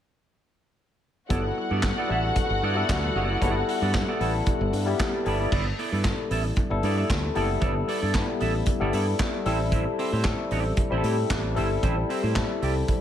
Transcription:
1.29 fingered electric bass G1, tine electric piano G3 B3 E4 A4, clean electric guitar B3 E4 A4 D5, violin section F#4 F#5, kick, closed hi-hat
1.44 muted clean electric guitar stroke
1.57 muted clean electric guitar stroke
1.71 fingered electric bass G2, clean electric guitar B3 E4 A4 D5
1.82 kick, snare, clap, closed hi-hat
1.98 clean electric guitar B3 E4 A4 D5
2.08 fingered electric bass A1, tine electric piano G3 B3 E4 A4, clean electric guitar B3 E4 A4 E5
2.25 muted clean electric guitar stroke
2.35 muted clean electric guitar stroke, kick, closed hi-hat
2.50 fingered electric bass G1, muted clean electric guitar stroke
2.62 fingered electric bass G2, clean electric guitar B3 E4 A4 D5
2.75 tine electric piano G3 B3 E4 A4, clean electric guitar B3 E4 A4 D5
2.89 fingered electric bass D2, kick, snare, clap, closed hi-hat
3.03 muted clean electric guitar stroke
3.15 fingered electric bass F#1, clean electric guitar B3 E4 A4 D5
3.29 clean electric guitar B3 E4 A4 D5
3.41 fingered electric bass G1, tine electric piano G3 B3 E4 A4, clean electric guitar B3 E4 A4 D5, kick, closed hi-hat
3.56 muted clean electric guitar stroke
3.69 muted clean electric guitar stroke, open hi-hat
3.82 fingered electric bass G2, clean electric guitar B3 E4 A4 D5
3.94 kick, snare, clap, closed hi-hat
4.09 clean electric guitar B3 E4 A4 D5
4.20 fingered electric bass A1, tine electric piano G3 B3 E4 A4, clean electric guitar B3 E4 A4 E5, open hi-hat
4.34 muted clean electric guitar stroke
4.46 muted clean electric guitar stroke, kick, closed hi-hat
4.61 fingered electric bass G1, muted clean electric guitar stroke
4.73 fingered electric bass G2, open hi-hat
4.86 tine electric piano G3 B3 E4 G4, muted clean electric guitar stroke
4.99 kick, snare, clap, closed hi-hat
5.14 muted clean electric guitar stroke
5.25 fingered electric bass G1, tine electric piano G3 B3 E4 A4, clean electric guitar B3 E4 A4 D5, open hi-hat
5.40 clean electric guitar B3 E4 A4 D5
5.52 fingered electric bass G1, clean electric guitar B3 E4 A4 D5, kick, crash
5.66 muted clean electric guitar stroke
5.79 clean electric guitar B3 E4 A4 D5, open hi-hat
5.92 fingered electric bass G2, clean electric guitar B3 E4 A4 D5
6.03 tine electric piano G3 A#3 E4 A4, kick, snare, clap, closed hi-hat
6.10 tine electric piano B3
6.18 muted clean electric guitar stroke
6.31 fingered electric bass A1, clean electric guitar B3 E4 A4 E5, open hi-hat
6.45 muted clean electric guitar stroke
6.56 muted clean electric guitar stroke, kick, closed hi-hat
6.70 fingered electric bass G1, tine electric piano G3 B3 E4 A4, muted clean electric guitar stroke
6.83 fingered electric bass G2, clean electric guitar B3 E4 A4 D5, open hi-hat
6.97 clean electric guitar B3 E4 A4 D5
7.09 fingered electric bass D2, muted clean electric guitar stroke, kick, snare, clap, closed hi-hat
7.23 muted clean electric guitar stroke
7.35 fingered electric bass F#1, tine electric piano G3 B3 E4 A4, clean electric guitar B3 E4 A4 D5, open hi-hat
7.50 muted clean electric guitar stroke
7.61 fingered electric bass G1, clean electric guitar B3 E4 A4 D5, kick, closed hi-hat
7.75 muted clean electric guitar stroke
7.88 clean electric guitar B3 E4 A4 D5, open hi-hat
8.02 fingered electric bass G2, clean electric guitar B3 E4 A4 D5
8.14 tine electric piano G3 B3 E4 A4, kick, snare, clap, closed hi-hat
8.28 muted clean electric guitar stroke
8.40 fingered electric bass A1, clean electric guitar B3 E4 A4 E5, open hi-hat
8.55 muted clean electric guitar stroke
8.66 muted clean electric guitar stroke, kick, closed hi-hat
8.80 fingered electric bass G1, tine electric piano G3 B3 E4 A4, clean electric guitar B3 E4 A4 D5
8.93 fingered electric bass G2, clean electric guitar B3 E4 A4 D5, open hi-hat
9.19 kick, snare, clap, closed hi-hat
9.33 muted clean electric guitar stroke
9.45 fingered electric bass A1, tine electric piano G3 C4 E4 A4, clean electric guitar C4 E4 G4 C5, open hi-hat
9.60 muted clean electric guitar stroke
9.71 clean electric guitar C4 E4 G4 C5, kick, closed hi-hat
9.86 muted clean electric guitar stroke
9.98 clean electric guitar C4 E4 G4 C5, open hi-hat
10.12 fingered electric bass A2, clean electric guitar C4 E4 G4 C5
10.23 tine electric piano G3 C4 E4 A4, kick, snare, clap, closed hi-hat
10.39 muted clean electric guitar stroke
10.51 fingered electric bass A1, clean electric guitar C4 E4 G4 D5, open hi-hat
10.65 muted clean electric guitar stroke
10.77 muted clean electric guitar stroke, kick, closed hi-hat
10.90 fingered electric bass A1, tine electric piano G3 C4 E4 G4, clean electric guitar C4 E4 G4 C5
10.98 tine electric piano A4
11.03 fingered electric bass A2, clean electric guitar C4 E4 G4 C5, open hi-hat
11.30 fingered electric bass A1, muted clean electric guitar stroke, kick, snare, clap, closed hi-hat
11.45 muted clean electric guitar stroke
11.55 fingered electric bass G1, tine electric piano G3 C4 E4 A4, clean electric guitar C4 E4 G4 C5, open hi-hat
11.71 muted clean electric guitar stroke
11.83 fingered electric bass A1, clean electric guitar C4 E4 G4 C5, kick, closed hi-hat
11.97 muted clean electric guitar stroke
12.09 clean electric guitar C4 E4 G4 C5, open hi-hat
12.23 fingered electric bass A2, clean electric guitar C4 E4 G4 C5
12.35 tine electric piano G3 C4 E4 A4, kick, snare, clap, closed hi-hat
12.49 muted clean electric guitar stroke
12.62 fingered electric bass C2, clean electric guitar C4 E4 G4 D5, open hi-hat
12.75 muted clean electric guitar stroke
12.88 muted clean electric guitar stroke, kick, closed hi-hat

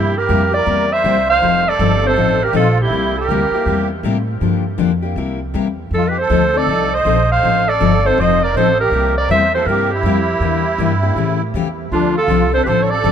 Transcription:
Already playing: upright bass G2, steel-string acoustic guitar C3 G3 A#3 E4 G4, accordion E4, clarinet G4
0.17 accordion G4, clarinet A#4
0.29 upright bass F2, steel-string acoustic guitar C3 G3 A#3 E4 G4
0.51 steel-string acoustic guitar A#3 E4 G4, clarinet D5
0.56 accordion A#4
0.66 upright bass E2, steel-string acoustic guitar C3 G3 A#3 E4 G4
0.93 accordion C5, clarinet E5
1.04 upright bass C2, steel-string acoustic guitar C3 G3 A#3 E4 G4
1.30 accordion C5, clarinet F5
1.42 upright bass F1, steel-string acoustic guitar F3 C4 D#4 A4
1.68 accordion A4, clarinet D5
1.79 upright bass G1, steel-string acoustic guitar F3 C4 D#4 A4
2.02 steel-string acoustic guitar C4 D#4 A4
2.07 accordion A4, clarinet C5
2.16 upright bass A1, steel-string acoustic guitar F3 C4 D#4 A4
2.44 accordion G4, clarinet A#4
2.53 upright bass A#1, steel-string acoustic guitar F3 C4 D#4 A4, clarinet A4
2.58 accordion F4
2.82 accordion E4, clarinet G4
2.90 upright bass C2, steel-string acoustic guitar C3 G3 A#3 E4 G4
3.18 accordion G4, clarinet A#4
3.29 upright bass D2, steel-string acoustic guitar C3 G3 A#3 E4 G4
3.51 steel-string acoustic guitar E4 G4, muted upright bass stroke
3.56 steel-string acoustic guitar A#3
3.66 upright bass E2, steel-string acoustic guitar C3 G3 A#3 E4 G4
4.03 upright bass A2, steel-string acoustic guitar C3 G3 A#3 E4 G4
4.41 upright bass G2, steel-string acoustic guitar D3 F3 A#3 D4 G4
4.78 upright bass F2, steel-string acoustic guitar D3 F3 A#3 D4 G4
5.02 steel-string acoustic guitar A#3 D4 G4
5.16 upright bass C2, steel-string acoustic guitar C3 G3 A#3 E4 G4
5.54 upright bass E2, steel-string acoustic guitar C3 G3 A#3 E4 G4
5.91 upright bass F2, steel-string acoustic guitar F3 C4 D#4 A4, clarinet A4
5.97 accordion F4
6.08 accordion G4, clarinet B4
6.18 accordion A4, clarinet C5
6.30 upright bass D2, steel-string acoustic guitar F3 C4 D#4 A4
6.54 steel-string acoustic guitar C4 D#4 A4, accordion A4, clarinet D5
6.67 upright bass C2, steel-string acoustic guitar F3 C4 D#4 A4
6.94 accordion C5, clarinet D#5
7.05 upright bass A#1, steel-string acoustic guitar F3 C4 D#4 A4
7.31 accordion C5, clarinet F5
7.43 upright bass A1, steel-string acoustic guitar F3 C4 D#4 A4
7.67 accordion A4, clarinet D5
7.80 upright bass G1, steel-string acoustic guitar F3 C4 D#4 A4
8.04 steel-string acoustic guitar C4 D#4 A4, accordion A4, clarinet C5
8.18 upright bass F1, steel-string acoustic guitar F3 C4 D#4 A4, accordion C5, clarinet D#5
8.43 accordion A#4, clarinet D5
8.54 upright bass A1, steel-string acoustic guitar F3 C4 D#4 A4, accordion A4, clarinet C5
8.80 accordion G4, clarinet A#4
8.91 upright bass C2, steel-string acoustic guitar C3 G3 A#3 E4 G4
9.18 accordion A#4, clarinet D5
9.29 upright bass E2, steel-string acoustic guitar C3 G3 A#3 E4 G4, accordion C5, clarinet E5
9.55 steel-string acoustic guitar A#3 E4 G4, accordion A4, clarinet C5
9.66 upright bass G2, steel-string acoustic guitar C3 G3 A#3 E4 G4, accordion G4, clarinet A#4
9.91 accordion E4, clarinet G4
10.03 upright bass F2, steel-string acoustic guitar C3 G3 A#3 E4 G4
10.40 upright bass E2, steel-string acoustic guitar E3 A#3 D4 G4
10.78 upright bass G2, steel-string acoustic guitar E3 A#3 D4 G4
11.02 steel-string acoustic guitar A#3 D4 G4
11.16 upright bass A2, steel-string acoustic guitar C#3 E3 A3 C#4 G4
11.54 upright bass E2, steel-string acoustic guitar C#3 E3 A3 C#4 G4
11.92 upright bass D2, steel-string acoustic guitar D3 F3 C4 D4 A4, accordion D4, clarinet F4
12.15 accordion F4, clarinet A4
12.28 upright bass C2, steel-string acoustic guitar D3 F3 C4 D4 A4
12.52 steel-string acoustic guitar C4 D4 A4, accordion A4, clarinet C5
12.64 upright bass A1, steel-string acoustic guitar D3 F3 C4, accordion G4, clarinet B4
12.68 steel-string acoustic guitar D4 A4, accordion A4, clarinet C5
12.82 accordion A4, clarinet C#5
12.90 accordion A4, clarinet D5
13.04 upright bass G1, steel-string acoustic guitar D3 F3 C4 D4 A4

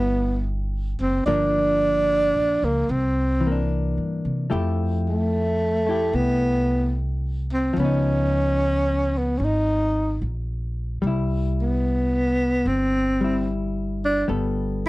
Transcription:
Already playing: upright bass G1, hollow-body jazz guitar G3 E4, tenor saxophone B3
1.00 upright bass F#1, tenor saxophone C4
1.26 upright bass G1, hollow-body jazz guitar F3 A#3 D4, tenor saxophone D4
2.35 upright bass A#1
2.63 upright bass C#2, tenor saxophone A#3
2.89 upright bass C2, tenor saxophone C4
3.41 hollow-body jazz guitar E3
3.47 hollow-body jazz guitar A#3
3.52 hollow-body jazz guitar D4
3.97 upright bass G2
4.25 upright bass C3
4.50 upright bass F2, hollow-body jazz guitar F3 A3 E4 G4
5.09 tenor saxophone A3
5.87 hollow-body jazz guitar A3 E4 G4
6.13 upright bass C2, tenor saxophone B3
7.53 tenor saxophone C4
7.73 upright bass C#2, hollow-body jazz guitar F3
7.79 hollow-body jazz guitar B3, tenor saxophone C#4
7.84 hollow-body jazz guitar D#4
9.18 tenor saxophone B3
9.38 upright bass G#1, tenor saxophone C#4
9.44 tenor saxophone D#4
10.22 upright bass A#1
11.02 upright bass C2, hollow-body jazz guitar G3
11.07 hollow-body jazz guitar E4
11.61 tenor saxophone B3
12.66 upright bass G1, tenor saxophone C4
13.21 hollow-body jazz guitar G3 E4
14.05 tenor saxophone D4
14.28 upright bass G1, hollow-body jazz guitar G3 B3 A4

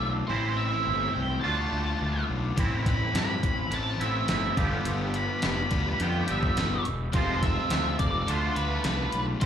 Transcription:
Already playing: clean electric guitar D3 A3 D4 F4, lead electric guitar E5
0.00 fingered electric bass B1
0.27 fingered electric bass A1, clean electric guitar A2 E3 C4 E4, overdriven electric guitar A3, lead electric guitar C5
0.57 lead electric guitar E5
0.86 fingered electric bass G1
1.13 fingered electric bass C2, lead electric guitar G5
1.41 clean electric guitar D3 A3 D4 F4, lead electric guitar A5
1.45 fingered electric bass D2
1.72 fingered electric bass D2
2.01 fingered electric bass D2
2.30 fingered electric bass B1
2.57 fingered electric bass A1, clean electric guitar A2 E3 C4 E4, overdriven electric guitar A3, kick, closed hi-hat
2.86 lead electric guitar B5, kick, closed hi-hat
3.14 fingered electric bass G2, snare, closed hi-hat
3.19 lead electric guitar B5
3.43 fingered electric bass A1, kick, closed hi-hat
3.71 fingered electric bass A1, overdriven electric guitar A2 E3 A3 C4 E4, lead electric guitar A5, closed hi-hat
4.00 fingered electric bass A1, clean electric guitar A2 E3 B3 C4 E4, lead electric guitar E5, closed hi-hat
4.28 fingered electric bass G1, clean electric guitar A2 E3 B3 C4 E4, snare, closed hi-hat
4.56 fingered electric bass G1, clean electric guitar G2 D3 F3 G3 B3 G4, overdriven electric guitar F4, kick, closed hi-hat
4.85 fingered electric bass G1, closed hi-hat
5.14 lead electric guitar B5, closed hi-hat
5.42 fingered electric bass F1, lead electric guitar B5, snare, closed hi-hat
5.71 fingered electric bass D2, overdriven electric guitar G2 D3 F3 B3 F4, kick, closed hi-hat
6.00 fingered electric bass F2, clean electric guitar G2 D3 F3 G3 B3 G4, lead electric guitar G5, closed hi-hat
6.27 fingered electric bass G1, clean electric guitar G2 D3 F3 G3 B3 G4, lead electric guitar E5, closed hi-hat
6.43 kick
6.57 fingered electric bass G1, snare, closed hi-hat
6.85 fingered electric bass E1, closed hi-hat
7.13 fingered electric bass F1, clean electric guitar F2 C3 F3 G#3 C4 F4, lead electric guitar C5, kick, closed hi-hat
7.43 lead electric guitar E5, kick, closed hi-hat
7.70 fingered electric bass D2, snare, closed hi-hat
7.99 fingered electric bass F1, lead electric guitar D5, kick, closed hi-hat
8.27 fingered electric bass D2, clean electric guitar D3 A3 D4 F4, lead electric guitar C5, closed hi-hat
8.56 fingered electric bass D2, lead electric guitar B4, closed hi-hat
8.83 fingered electric bass C2, lead electric guitar B4, snare, closed hi-hat
9.12 fingered electric bass B1, closed hi-hat
9.41 fingered electric bass A1, clean electric guitar A2 E3 C4, overdriven electric guitar A3, lead electric guitar C5, kick, closed hi-hat

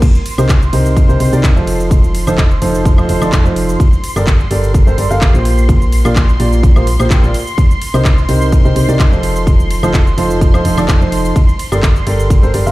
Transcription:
0.02 analog synth pad C6, kick, crash, ride, shaker
0.15 shaker
0.26 open hi-hat, ride
0.38 fm bass C2, upright piano C3 D#4 G4 A#4 C5, high woodblock, shaker
0.49 kick, clap, ride, shaker
0.62 shaker
0.73 fm bass C2, upright piano C3 D#4 G4 A#4 C5, open hi-hat, ride
0.86 shaker
0.97 kick, ride, shaker
1.09 fm bass C2, upright piano C3 D#4 G4 A#4 C5, shaker
1.20 fm bass C2, upright piano C3 D#4 G4 A#4 C5, open hi-hat, ride
1.33 fm bass C2, upright piano C3 D#4 G4 A#4 D5, shaker
1.43 kick, clap, ride, shaker
1.56 fm bass F1, upright piano F3 D#4 F4 A4 C5, shaker
1.67 open hi-hat, ride
1.80 shaker
1.91 kick, ride, shaker
2.04 shaker
2.15 open hi-hat, ride
2.27 fm bass F1, upright piano F3 D#4 F4 A4 C5, high woodblock, shaker
2.38 kick, clap, ride, shaker
2.51 shaker
2.62 fm bass F1, upright piano F3 D#4 F4 A4 C5, open hi-hat, ride
2.75 shaker
2.85 kick, ride, shaker
2.98 fm bass F1, upright piano F3 D#4 F4 A4 C5, high woodblock, shaker
3.09 fm bass F1, upright piano F3 D#4 F4 A4 C5, open hi-hat, ride
3.22 fm bass F1, upright piano F3 D#4 F4 A4 D5, high woodblock, shaker
3.32 kick, clap, ride, shaker
3.45 fm bass F1, upright piano F3 D#4 F4 A4 C5, shaker
3.56 open hi-hat, ride
3.69 shaker
3.80 kick, ride, shaker
3.93 shaker
4.04 open hi-hat, ride
4.16 fm bass G1, upright piano G3 G4 A4 A#4 D5, high woodblock, shaker
4.27 kick, clap, ride, shaker
4.40 shaker
4.51 fm bass G1, upright piano G3 G4 A4 A#4 D5, open hi-hat, ride
4.64 shaker
4.74 kick, ride, shaker
4.87 fm bass G1, upright piano G3 G4 A4 A#4 C5, shaker
4.98 fm bass G1, upright piano G3 G4 A4 A#4 D5, open hi-hat, ride
5.11 fm bass G1, upright piano G3 G4 A4 A#4 F5, shaker
5.21 kick, clap, ride, shaker
5.34 fm bass A#1, upright piano A#3 F4 G4 A#4 C5, shaker
5.45 open hi-hat, ride
5.58 shaker
5.69 kick, ride, shaker
5.82 shaker
5.92 open hi-hat, ride
6.05 fm bass A#1, upright piano A#3 F4 G4 A#4 D5, high woodblock, shaker
6.16 kick, clap, ride, shaker
6.29 shaker
6.40 fm bass A#1, upright piano A#3 F4 G4 A#4 D5, open hi-hat, ride
6.53 shaker
6.63 kick, ride, shaker
6.76 fm bass A#1, upright piano A#3 F4 G4 A#4 C5, high woodblock, shaker
6.87 open hi-hat, ride
7.00 fm bass A#1, upright piano A#3 F4 G4 A#4 C5, high woodblock, shaker
7.10 fm bass A#1, upright piano A#3 F4 G4 A#4 G5, kick, clap, ride, shaker
7.23 fm bass A#1, upright piano A#3 F4 G4 A#4 D5, shaker
7.34 open hi-hat, ride
7.47 shaker
7.58 kick, ride, shaker
7.71 shaker
7.82 open hi-hat, ride
7.94 fm bass C2, upright piano C3 D#4 G4 A#4 C5, high woodblock, shaker
8.05 kick, clap, ride, shaker
8.18 shaker
8.29 fm bass C2, upright piano C3 D#4 G4 A#4 C5, open hi-hat, ride
8.42 shaker
8.52 kick, ride, shaker
8.65 fm bass C2, upright piano C3 D#4 G4 A#4 C5, shaker
8.76 fm bass C2, upright piano C3 D#4 G4 A#4 C5, open hi-hat, ride
8.89 fm bass C2, upright piano C3 D#4 G4 A#4 D5, shaker
8.99 kick, clap, ride, shaker
9.12 fm bass F1, upright piano F3 D#4 F4 A4 C5, shaker
9.23 open hi-hat, ride
9.36 shaker
9.47 kick, ride, shaker
9.60 shaker
9.71 open hi-hat, ride
9.83 fm bass F1, upright piano F3 D#4 F4 A4 C5, high woodblock, shaker
9.94 kick, clap, ride, shaker
10.07 shaker
10.18 fm bass F1, upright piano F3 D#4 F4 A4 C5, open hi-hat, ride
10.31 shaker
10.41 kick, ride, shaker
10.54 fm bass F1, upright piano F3 D#4 F4 A4 C5, high woodblock, shaker
10.65 fm bass F1, upright piano F3 D#4 F4 A4 C5, open hi-hat, ride
10.77 fm bass F1, upright piano F3 D#4 F4 A4 D5, high woodblock, shaker
10.88 kick, clap, ride, shaker
11.01 fm bass F1, upright piano F3 D#4 F4 A4 C5, shaker
11.12 open hi-hat, ride
11.25 shaker
11.36 kick, ride, shaker
11.49 shaker
11.59 open hi-hat, ride
11.72 fm bass G1, upright piano G3 G4 A4 A#4 D5, high woodblock, shaker
11.83 kick, clap, ride, shaker
11.96 shaker
12.07 fm bass G1, upright piano G3 G4 A4 A#4 D5, open hi-hat, ride
12.20 shaker
12.30 kick, ride, shaker
12.43 fm bass G1, upright piano G3 G4 A4 A#4 C5, shaker
12.54 fm bass G1, upright piano G3 G4 A4 A#4 D5, open hi-hat, ride
12.66 fm bass G1, upright piano G3 G4 A4 A#4 F5, shaker

